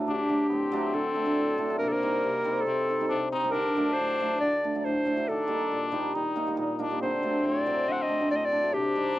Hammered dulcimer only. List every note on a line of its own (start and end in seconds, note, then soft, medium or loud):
0.00 0.13 A2 soft
0.00 0.13 F#3 medium
0.08 0.56 D3 medium
0.29 0.70 F#3 medium
0.29 0.40 A3 medium
0.29 0.41 D4 medium
0.51 1.00 A2 medium
0.72 1.00 F#3 loud
0.72 0.83 A3 medium
0.72 0.84 D4 loud
0.94 1.43 D3 medium
1.15 1.21 A3 medium
1.15 1.22 D4 medium
1.25 1.69 F#3 medium
1.25 1.37 A3 medium
1.25 1.38 D4 medium
1.37 1.86 A2 medium
1.58 1.64 A3 medium
1.58 1.65 D4 medium
1.70 1.86 F#3 medium
1.70 1.81 A3 medium
1.70 1.81 D4 medium
1.81 2.22 C3 medium
2.02 2.43 G3 medium
2.02 2.14 C4 medium
2.02 2.14 D#4 medium
2.24 2.65 C3 medium
2.44 2.99 G3 medium
2.44 2.56 C4 medium
2.44 2.57 D#4 medium
2.67 3.09 C3 medium
2.89 2.95 C4 medium
2.89 2.95 D#4 medium
3.00 3.43 G3 medium
3.00 3.11 C4 medium
3.00 3.11 D#4 medium
3.11 3.59 C3 medium
3.32 3.38 C4 medium
3.32 3.38 D#4 medium
3.44 3.59 G3 medium
3.44 3.55 C4 medium
3.44 3.55 D#4 medium
3.54 4.03 D3 medium
3.77 4.19 F#3 medium
3.77 3.87 A3 medium
3.77 3.87 D4 medium
3.99 4.46 A2 medium
4.20 4.46 F#3 medium
4.20 4.31 A3 medium
4.20 4.31 D4 medium
4.42 4.89 D3 medium
4.64 4.69 A3 medium
4.64 4.69 D4 medium
4.75 5.16 F#3 medium
4.75 4.85 A3 soft
4.75 4.85 D4 medium
4.86 5.32 A2 medium
5.05 5.11 A3 medium
5.05 5.12 D4 medium
5.17 5.32 F#3 medium
5.17 5.28 A3 medium
5.17 5.28 D4 medium
5.29 5.76 D#3 medium
5.47 5.90 G3 medium
5.47 5.59 A#3 medium
5.47 5.60 D#4 medium
5.72 6.19 A#2 medium
5.92 6.19 G3 medium
5.92 6.03 A#3 medium
5.92 6.03 D#4 medium
6.15 6.62 D#3 medium
6.36 6.41 A#3 medium
6.36 6.41 D#4 medium
6.47 6.89 G3 medium
6.47 6.57 A#3 medium
6.47 6.58 D#4 medium
6.57 7.05 A#2 medium
6.79 6.84 A#3 medium
6.79 6.85 D#4 medium
6.90 7.05 G3 medium
6.90 7.01 A#3 soft
6.90 7.01 D#4 medium
7.03 7.48 D3 medium
7.23 7.65 F#3 medium
7.23 7.33 A3 medium
7.23 7.33 D4 medium
7.45 7.92 A2 medium
7.66 7.92 F#3 medium
7.66 7.76 A3 medium
7.66 7.77 C4 medium
7.87 8.35 D3 medium
8.08 8.13 A3 medium
8.08 8.14 D4 medium
8.20 8.61 F#3 medium
8.20 8.30 A3 medium
8.20 8.31 D4 medium
8.32 8.78 A2 medium
8.52 8.57 A3 medium
8.52 8.57 D4 medium
8.62 8.78 F#3 medium
8.62 8.73 A3 medium
8.62 8.74 D4 medium
8.74 9.15 C3 medium
8.95 9.19 G3 medium
8.95 9.06 C4 medium
8.95 9.06 D#4 medium